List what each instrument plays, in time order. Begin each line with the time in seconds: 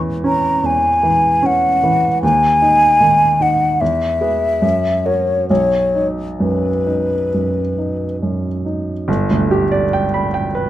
Already playing: grand piano E2 E3 C#4
0.24 grand piano C#4, flute A#5
0.63 grand piano E2, flute G#5
1.03 grand piano E3
1.43 grand piano C#4, flute F#5
1.83 grand piano E3
2.23 grand piano D#2, flute G#5
2.62 grand piano D#4
3.01 grand piano D#3
3.40 grand piano D#4, flute F#5
3.81 grand piano E2, flute E5
4.21 grand piano G#4 B4
4.62 grand piano F#2
5.05 grand piano F#4 A#4, flute C#5
5.49 grand piano B1, flute C#5
5.95 grand piano D#4
6.40 grand piano F#2, flute B4
6.87 grand piano D#4
7.34 grand piano F#2
7.79 grand piano D#4
8.23 grand piano F#2
8.66 grand piano D#4
9.08 grand piano G1
9.30 grand piano D2
9.51 grand piano G4
9.72 grand piano D5
9.93 grand piano G5
10.14 grand piano B5
10.34 grand piano G5
10.55 grand piano B4